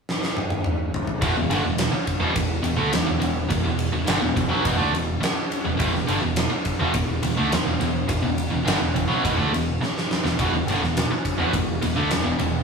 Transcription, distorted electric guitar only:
1.22 E2 B2
1.37 E2 B2
1.50 G2 D3
1.64 E2 B2
1.92 muted distorted electric guitar stroke
2.20 E2 B2
2.34 E2 B2
2.63 E2 B2
2.76 D3 A3
2.91 E2 B2
3.06 E2 B2
3.19 E2 B2
3.49 E2 B2
3.63 E2 B2
3.93 E2 B2
4.06 G2 D3
4.21 E2 B2
4.36 E2 B2
4.49 B2 F#3
4.63 E2 B2
4.78 D3 A3
4.92 E2 B2
5.21 muted distorted electric guitar stroke
5.65 E2 B2
5.77 E2 B2
5.93 E2 B2
6.07 G2 D3
6.21 E2 B2
6.50 muted distorted electric guitar stroke
6.80 E2 B2
6.94 E2 B2
7.23 E2 B2
7.37 D3 A3
7.52 E2 B2
7.65 E2 B2
7.80 E2 B2
8.08 E2 B2
8.22 E2 B2
8.51 E2 B2
8.65 G2 D3
8.79 E2 B2
8.94 E2 B2
9.08 B2 F#3
9.23 E2 B2
9.37 D3 A3
9.52 E2 B2
9.82 muted distorted electric guitar stroke
10.24 E2 B2
10.39 E2 B2
10.54 E2 B2
10.69 G2 D3
10.83 E2 B2
11.11 muted distorted electric guitar stroke
11.38 E2 B2
11.55 E2 B2
11.82 E2 B2
11.96 D3 A3
12.10 E2 B2
12.24 E2 B2
12.39 E2 B2

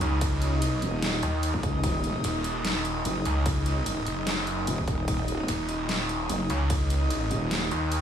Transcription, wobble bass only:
0.82 D#1
1.54 C#2
1.84 D#1
3.05 F#1
4.67 D#1
4.88 E1
5.08 D#1
6.29 F#1
7.31 D#1

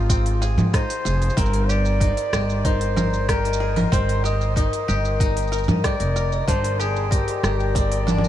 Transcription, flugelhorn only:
Already playing: F4
0.74 C5
1.38 A#4
1.69 D5
2.65 C5
3.29 A#4
3.93 C5
4.25 D#5
4.57 D#5
5.85 D5
6.48 C5
6.80 G#4
7.12 G4
7.76 D5

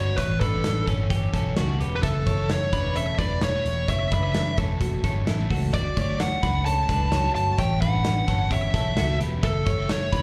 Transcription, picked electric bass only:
Already playing: G1
0.17 A1
0.41 A1
0.87 G1
1.33 B1
1.57 C#2
1.80 E1
2.03 F#1
2.27 F#1
2.73 E1
3.19 E1
3.66 E1
3.88 F#1
4.12 F#1
4.58 E1
5.04 G1
5.28 A1
5.50 C#2
5.73 D2
5.97 D2
6.43 C#2
6.89 C#2
7.35 G1
7.58 A1
7.82 A1
8.28 G1
8.74 B1
8.97 C#2
9.20 E1
9.43 F#1
9.67 F#1
10.13 E1

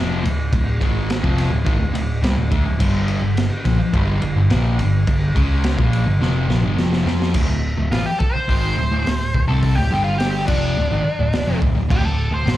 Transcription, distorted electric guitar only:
Already playing: F2 C3 F3
0.24 D2 A2
0.53 D2 A2
0.80 G#2 D#3 G#3
1.23 F2 C3 F3
1.51 D2 A2
1.64 G#2 D#3
1.79 D2 A2
1.94 D2 A2
2.22 C3 G3
2.37 D2 A2
2.51 D3 A3
2.65 D2 A2
2.79 G2 D3 G3
3.21 G2 D3
3.64 A#2 F3
3.79 muted distorted electric guitar stroke
3.93 G2 D3 G3
4.21 G2 D3
4.37 G2 D3
4.50 A#2 F3 A#3
4.80 G2 D3
5.07 G2 D3
5.35 C#3 G#3 C#4
5.77 A#2 F3 A#3
6.06 G2 D3
6.20 F2 C3 F3
6.49 A#2 F3
6.63 G2 D3
6.77 F2 C3 F3
7.05 F3 C4 F4
7.34 D2 A2
7.49 D2 A2
7.78 D2 A2
7.92 A2 E3
8.07 muted distorted electric guitar stroke
8.20 muted distorted electric guitar stroke
8.35 muted distorted electric guitar stroke
8.48 G#2 D#3 G#3
8.78 D2 A2
8.91 D2 A2
9.05 D2 A2
9.35 D2 A2
9.48 C3 G3 C4
9.77 D2 A2
9.91 G2 D3 G3
10.47 F2 C3 F3
10.77 D2 A2
10.90 G#2 D#3
11.05 muted distorted electric guitar stroke
11.19 D2 A2
11.34 D2 A2
11.47 F2 C3
11.62 D2 A2
11.75 D2 A2
11.89 D2 A2
12.03 D2 A2
12.31 D2 A2
12.46 A2 E3

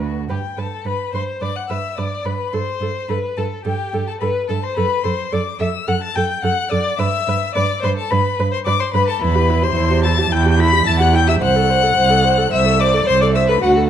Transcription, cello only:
Already playing: D2
0.30 G2
0.58 G2
0.85 G2
1.13 G2
1.41 G2
1.70 G2
1.98 G2
2.25 G2
2.54 G2
2.81 G2
3.09 G2
3.38 G2
3.66 G2
3.94 G2
4.22 G2
4.50 G2
4.78 F#2
5.05 F#2
5.33 F#2
5.60 F#2
5.88 F#2
6.16 F#2
6.44 F#2
6.72 F#2
6.99 G2
7.28 G2
7.56 G2
7.84 G2
8.12 G2
8.39 G2
8.67 G2
8.94 G2
9.22 E2
9.77 E2
10.32 E2
10.87 E2
11.42 C2
11.98 C2
12.53 C2
13.08 C2
13.63 D2

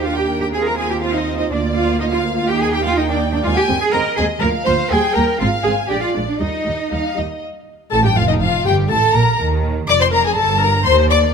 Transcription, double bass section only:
Already playing: D#2
1.52 D2
2.48 D#2
3.46 D#2
3.70 D#2
3.94 D#2
4.19 D#2
4.42 D2
4.67 D2
4.91 D#2
5.16 D#2
5.41 G#1
5.66 G#1
5.92 A#1
6.17 A#1
6.41 D#2
6.67 D#2
6.93 D#2
7.19 D#2
7.93 A1
8.16 F1
8.41 F1
8.66 G1
8.90 A1
9.15 A#1
9.40 D#2
9.89 F1
10.37 G1
10.87 D#2

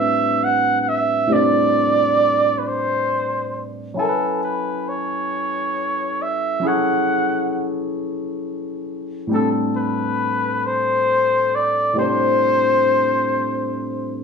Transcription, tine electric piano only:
Already playing: A2 G3 C4 D4 B4
1.27 A2 G3
1.31 C4 D4
1.36 D5
3.94 F#3 C#4 E4
3.99 A4 A#4 G#5
4.09 B4
6.60 F#3 C#4 E4
6.65 G#4 A4 C#5
9.27 A2 G3
9.31 C4 D4
9.36 A4
11.93 A2 G3
11.98 C4 D4 C5

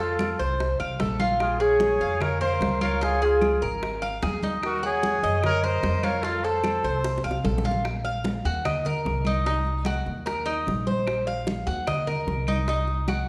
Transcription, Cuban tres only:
0.00 A4
0.39 C5
0.80 F5
1.00 A4
1.20 F4
1.60 G#4
2.01 F5
2.41 A#4
2.81 F4
3.01 F4
3.22 G#4
3.62 A#4
4.02 F5
4.23 G#4
4.43 D#4
4.83 F#4
5.24 D#5
5.64 A#4
6.04 F4
6.25 F4
6.44 A4
6.84 C5
7.24 F5
7.45 A4
7.65 F4
8.05 F5
8.45 F#4
8.65 D#5
8.86 A#4
9.27 D#4
9.46 D#4
9.86 F#4
10.26 A#4
10.46 D#4
10.87 C5
11.27 F5
11.67 F#4
11.87 D#5
12.07 A#4
12.48 D#4
12.69 D#4
13.08 F#4

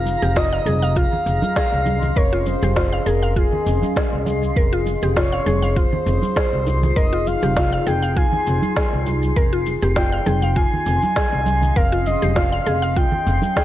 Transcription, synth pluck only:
0.22 G4
0.36 F4
0.53 F5
0.66 G#4
0.82 F5
0.96 F4
1.57 G#4
2.17 A#4
2.33 F4
2.63 G4
2.76 F4
2.93 F5
3.06 G#4
3.23 F5
3.36 F4
3.97 G#4
4.57 A#4
4.73 F4
5.03 G4
5.16 F4
5.32 F5
5.46 G#4
5.62 F5
5.76 F4
6.36 G#4
6.96 A#4
7.13 F4
7.43 G4
7.57 F4
7.73 F5
7.87 G#4
8.03 F5
8.17 F4
8.77 G#4
9.36 A#4
9.53 F4
9.82 G4
9.96 F4
10.12 F5
10.26 G#4
10.42 F5
10.56 F4
11.16 G#4
11.76 A#4
11.92 F4
12.22 G4
12.36 F4
12.53 F5
12.66 G#4
12.82 F5
12.96 F4
13.57 G#4

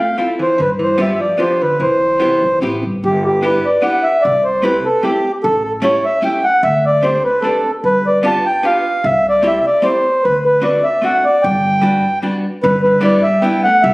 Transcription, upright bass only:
0.60 G2
1.80 C2
2.42 B1
2.61 A1
2.83 G1
3.04 G1
4.25 C2
5.44 A1
6.63 D2
7.84 G1
9.04 C2
10.25 D2
11.44 G1
12.64 G1
13.84 C2

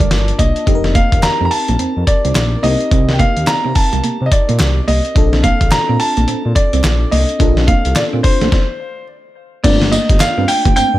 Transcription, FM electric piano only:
Already playing: A#3 D4 F4 A5
0.66 C4 D#4 G4 A4
0.75 A#4
2.63 C4 D#4 G4 A#4
5.15 C4 D4 F4 A4
7.39 C4 D4 F4 A4
9.64 A3 A#3 D4 F4

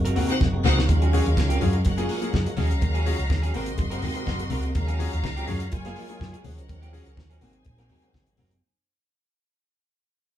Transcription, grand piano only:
0.16 A#3 C4 F#4
0.41 C4 F#4
0.54 G#2 D#3
0.65 A#3 C4 F#4
0.90 D#3 A#3
1.13 C#4 F4 F#4 G#4
1.26 F#4 G#4
1.61 C#4 F4 F#4 G#4
1.97 A#3 F4 G#4
2.09 F#3
2.22 A#3 F4 G#4
2.33 F4 G#4
2.46 F#3
2.57 F#4 G#4
2.82 D#3 A#3
3.06 C#4 F4 F#4 G#4
3.20 F#4 G#4
3.55 C4 F#4 A#4
3.91 C4 F#4 A#4
4.03 G#2 D#3
4.15 C4 F#4 A#4
4.27 F#4 A#4
4.40 G#2 D#3
4.51 F#4 A#4
4.76 D#3 A#3
4.99 C#4 F4 F#4 G#4
5.12 F#4 G#4
5.47 C#4 F4 F#4 G#4
5.85 A#3 F4 G#4
5.97 F#3
6.09 A#3 F4 G#4
6.20 F4 G#4
6.34 F#3
6.44 F#4 G#4
6.68 D#3 A#3
6.93 C#4 F4 F#4 G#4
7.06 F#4 G#4
7.41 A#3 C4 F#4
7.78 A#3 C4 F#4
7.90 G#2 D#3
8.02 A#3 C4 F#4
8.14 C4 F#4
8.27 G#2 D#3
8.38 C4 F#4

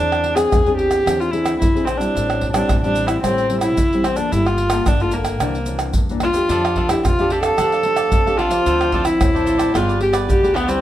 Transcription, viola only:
Already playing: D4
0.36 G#4
0.77 G4
1.20 F4
1.31 E4
1.59 E4
1.85 C4
1.98 D4
2.53 D4
2.82 D4
3.07 E4
3.23 C4
3.61 E4
4.05 C4
4.16 D4
4.32 E4
4.46 F4
4.88 D4
5.01 F4
5.13 A#3
6.23 F4
6.89 E4
7.06 F4
7.32 G4
7.43 A4
8.38 F4
9.05 E4
9.76 F4
10.02 G4
10.30 G4
10.56 B3
10.68 C4

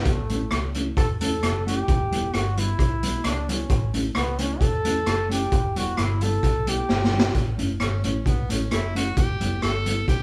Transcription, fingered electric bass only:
0.06 A1
0.52 C#2
0.97 E2
1.43 F#1
1.89 E1
2.34 G1
2.79 B1
3.25 C#2
3.70 A1
4.17 C#2
4.61 E2
5.07 F#1
5.52 E1
5.98 G1
6.44 B1
6.90 G1
7.35 A1
7.60 F#1
7.81 G1
8.05 A1
8.26 B1
8.51 A1
8.72 F#1
9.17 E1
9.42 F#1
9.63 G1
10.08 A1

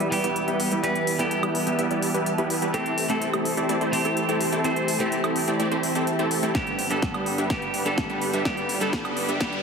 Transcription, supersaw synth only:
0.00 G3 B3 E4 G4 D5
0.24 G3 B3 E4 G4 B4
0.48 G3 B3 E4 G4 B4
0.72 G3 B3 E4 G4 B4
0.83 G3 B3 E4 G4 B4
1.19 G3 B3 E4 G4 A4
1.43 G3 B3 E4 G4 B4
1.67 G3 B3 E4 G4 E5
1.79 G3 B3 E4 G4 E5
1.91 G3 B3 E4 G4 D5
2.14 G3 B3 E4 G4 B4
2.38 G3 B3 E4 G4 B4
2.62 G3 B3 E4 G4 B4
2.74 A3 C4 E4 G4 A4
3.10 A3 C4 E4 G4 A4
3.33 A3 C4 E4 G4 A4
3.57 A3 C4 E4 G4 D5
3.69 A3 C4 E4 G4 D5
3.81 A3 C4 E4 G4 C5
4.05 A3 C4 E4 G4 A4
4.29 A3 C4 E4 G4 A4
4.52 A3 C4 E4 G4 A4
4.64 A3 C4 E4 G4 A4
5.00 A3 C4 E4 G4 A4
5.24 A3 C4 E4 G4 A4
5.48 A3 C4 E4 G4 D5
5.60 A3 C4 E4 G4 D5
5.71 A3 C4 E4 G4 C5
5.95 A3 C4 E4 G4 A4
6.19 A3 C4 E4 G4 A4
6.43 A3 C4 E4 G4 A4
6.91 G3 B3 D4 G4 A4
7.14 G3 B3 D4 G4 B4
7.38 G3 B3 D4 G4 E5
7.50 G3 B3 D4 G4 B4
7.86 G3 B3 D4 G4 A4
8.10 G3 B3 D4 G4 B4
8.33 G3 B3 D4 G4 E5
8.45 G3 B3 D4 G4
8.81 G3 B3 D4 G4 A4
9.05 G3 B3 D4 G4 B4
9.29 G3 B3 D4 G4 E5
9.41 G3 B3 D4 G4 B4

